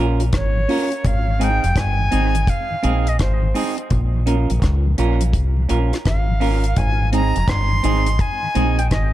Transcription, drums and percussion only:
0.20 closed hi-hat
0.33 kick, cross-stick, closed hi-hat
0.69 open hi-hat
0.92 closed hi-hat
1.05 kick, closed hi-hat
1.41 closed hi-hat
1.64 closed hi-hat
1.76 kick, cross-stick, closed hi-hat
2.12 closed hi-hat
2.35 closed hi-hat
2.47 kick, closed hi-hat
2.83 closed hi-hat
3.07 closed hi-hat
3.19 kick, cross-stick, closed hi-hat
3.55 open hi-hat
3.78 closed hi-hat
3.90 kick, closed hi-hat
4.27 closed hi-hat
4.50 closed hi-hat
4.62 kick, cross-stick, closed hi-hat
4.98 closed hi-hat
5.21 closed hi-hat
5.33 kick, closed hi-hat
5.69 closed hi-hat
5.93 cross-stick, closed hi-hat
6.05 kick, cross-stick, closed hi-hat
6.41 open hi-hat
6.64 closed hi-hat
6.76 kick, closed hi-hat
7.13 closed hi-hat
7.36 closed hi-hat
7.48 kick, cross-stick, closed hi-hat
7.84 closed hi-hat
8.06 closed hi-hat
8.19 kick, closed hi-hat
8.55 closed hi-hat
8.79 closed hi-hat
8.91 kick, cross-stick, closed hi-hat

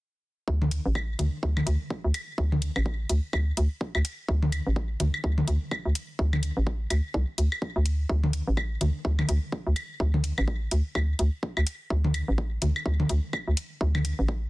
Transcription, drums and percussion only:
0.48 kick
0.62 high tom
0.71 closed hi-hat
0.95 kick, high woodblock
1.19 closed hi-hat, high tom
1.43 kick
1.57 high tom, high woodblock
1.67 closed hi-hat
1.90 kick
2.14 closed hi-hat, high woodblock
2.38 kick
2.52 high tom
2.62 closed hi-hat
2.76 high woodblock
2.86 kick
3.09 closed hi-hat
3.33 kick, high woodblock
3.57 closed hi-hat
3.81 kick
3.95 high woodblock
4.05 closed hi-hat
4.29 kick
4.42 high tom
4.52 closed hi-hat, high woodblock
4.76 kick
5.00 closed hi-hat, high tom
5.14 high woodblock
5.24 kick
5.38 high tom
5.48 closed hi-hat
5.71 kick, high woodblock
5.95 closed hi-hat
6.19 kick
6.33 high tom, high woodblock
6.43 closed hi-hat
6.67 kick
6.90 closed hi-hat, high woodblock
7.14 kick
7.38 closed hi-hat
7.52 high woodblock
7.62 kick
7.86 closed hi-hat
8.09 kick
8.24 high tom
8.33 closed hi-hat
8.57 kick, high woodblock
8.81 closed hi-hat, high tom
9.05 kick
9.19 high tom, high woodblock
9.29 closed hi-hat
9.52 kick
9.76 closed hi-hat, high woodblock
10.00 kick
10.14 high tom
10.24 closed hi-hat
10.38 high woodblock
10.48 kick
10.71 closed hi-hat
10.95 kick, high woodblock
11.19 closed hi-hat
11.43 kick
11.57 high woodblock
11.67 closed hi-hat
11.90 kick
12.04 high tom
12.14 closed hi-hat, high woodblock
12.38 kick
12.62 closed hi-hat, high tom
12.76 high woodblock
12.86 kick
13.00 high tom
13.09 closed hi-hat
13.33 kick, high woodblock
13.57 closed hi-hat
13.81 kick
13.95 high tom, high woodblock
14.05 closed hi-hat
14.28 kick

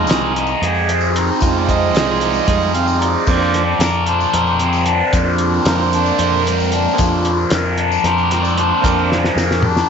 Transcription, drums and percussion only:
0.07 snare, closed hi-hat, tambourine
0.36 closed hi-hat
0.47 tambourine
0.63 closed hi-hat
0.74 tambourine
0.89 closed hi-hat
1.01 tambourine
1.16 closed hi-hat
1.40 kick, closed hi-hat, tambourine
1.69 kick, closed hi-hat
1.95 snare, closed hi-hat, tambourine
2.21 closed hi-hat
2.34 tambourine
2.48 kick, closed hi-hat
2.61 tambourine
2.75 closed hi-hat
2.88 tambourine
3.02 closed hi-hat
3.27 kick, crash, tambourine
3.54 snare, closed hi-hat
3.80 snare, closed hi-hat, tambourine
4.06 closed hi-hat
4.20 tambourine
4.34 closed hi-hat
4.47 tambourine
4.60 closed hi-hat
4.73 tambourine
4.86 closed hi-hat
5.13 kick, closed hi-hat, tambourine
5.38 closed hi-hat
5.65 snare, closed hi-hat, tambourine
5.80 tambourine
5.93 closed hi-hat
6.06 tambourine
6.19 closed hi-hat
6.34 tambourine
6.47 closed hi-hat
6.60 tambourine
6.72 closed hi-hat
6.98 kick, closed hi-hat, tambourine
7.25 closed hi-hat
7.50 snare, closed hi-hat, tambourine
7.66 tambourine
7.78 closed hi-hat
7.92 tambourine
8.04 snare, closed hi-hat
8.18 tambourine
8.31 snare, closed hi-hat
8.44 tambourine
8.58 closed hi-hat
8.84 kick, closed hi-hat, tambourine
8.99 tambourine
9.12 snare
9.24 snare
9.38 snare, tambourine
9.51 snare
9.63 mid tom
9.77 snare, tambourine

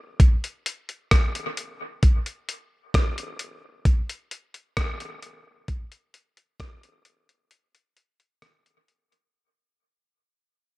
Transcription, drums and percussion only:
0.20 kick, closed hi-hat
0.44 closed hi-hat
0.66 closed hi-hat
0.89 closed hi-hat
1.11 kick, cross-stick, closed hi-hat
1.35 closed hi-hat
1.57 closed hi-hat
2.03 kick, closed hi-hat
2.26 closed hi-hat
2.49 closed hi-hat
2.94 kick, cross-stick, closed hi-hat
3.18 closed hi-hat
3.39 closed hi-hat
3.85 kick, closed hi-hat
4.09 closed hi-hat
4.31 closed hi-hat
4.54 closed hi-hat
4.77 kick, cross-stick, closed hi-hat
5.00 closed hi-hat
5.23 closed hi-hat
5.68 kick, closed hi-hat
5.92 closed hi-hat
6.14 closed hi-hat
6.37 closed hi-hat
6.60 kick, cross-stick, closed hi-hat
6.83 closed hi-hat
7.05 closed hi-hat
7.29 closed hi-hat
7.51 closed hi-hat
7.75 closed hi-hat
7.97 closed hi-hat
8.20 closed hi-hat
8.42 cross-stick, closed hi-hat
8.66 closed hi-hat
8.88 closed hi-hat
9.12 closed hi-hat

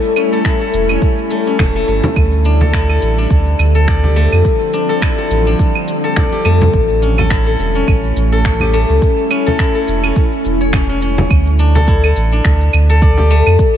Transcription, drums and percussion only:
0.04 shaker
0.16 claves, shaker
0.32 shaker
0.45 finger snap, kick, shaker
0.61 shaker
0.73 shaker
0.89 claves, shaker
1.02 kick, shaker
1.18 shaker
1.30 shaker
1.46 shaker
1.59 finger snap, kick, frame drum, claves, shaker
1.75 shaker
1.88 shaker
2.03 frame drum, shaker
2.16 kick, claves, shaker
2.32 shaker
2.45 shaker
2.61 frame drum, shaker
2.73 finger snap, kick, shaker
2.89 claves, shaker
3.02 shaker
3.18 shaker
3.30 kick, shaker
3.47 shaker
3.59 claves, shaker
3.75 shaker
3.88 finger snap, kick, shaker
4.03 frame drum, shaker
4.16 shaker
4.32 claves, shaker
4.45 kick, shaker
4.61 shaker
4.73 shaker
4.90 shaker
5.02 finger snap, kick, claves, shaker
5.18 shaker
5.31 shaker
5.47 shaker
5.59 kick, shaker
5.75 claves, shaker
5.88 shaker
6.04 shaker
6.16 finger snap, kick, frame drum, shaker
6.32 shaker
6.45 claves, shaker
6.61 frame drum, shaker
6.73 kick, shaker
6.89 shaker
7.02 shaker
7.18 frame drum, claves, shaker
7.30 finger snap, kick, shaker
7.47 shaker
7.59 shaker
7.75 shaker
7.88 kick, claves, shaker
8.04 shaker
8.16 shaker
8.32 shaker
8.45 finger snap, kick, shaker
8.60 frame drum, claves, shaker
8.74 shaker
8.90 shaker
9.02 kick, shaker
9.18 shaker
9.31 claves, shaker
9.47 frame drum, shaker
9.59 finger snap, kick, shaker
9.75 shaker
9.88 shaker
10.04 claves, shaker
10.16 kick, shaker
10.32 shaker
10.45 shaker
10.60 shaker
10.73 finger snap, kick, frame drum, claves, shaker
10.89 shaker
11.02 shaker
11.18 frame drum, shaker
11.30 kick, claves, shaker
11.46 shaker
11.59 shaker
11.75 frame drum, shaker
11.88 kick, shaker
12.04 claves, shaker
12.16 shaker
12.32 shaker
12.45 finger snap, kick, shaker
12.61 shaker
12.73 claves, shaker
12.89 shaker
13.02 kick, shaker
13.17 frame drum, shaker
13.30 shaker
13.47 claves, shaker
13.59 kick, shaker

